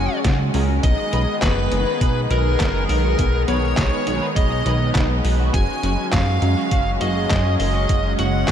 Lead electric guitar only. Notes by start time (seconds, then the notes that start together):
Already playing: G#5
0.84 D#5
1.43 B4
2.31 A#4
2.89 A#4
3.49 C#5
4.36 D#5
5.54 G#5
6.13 F5
7.01 D#5
7.60 D#5
8.19 F#5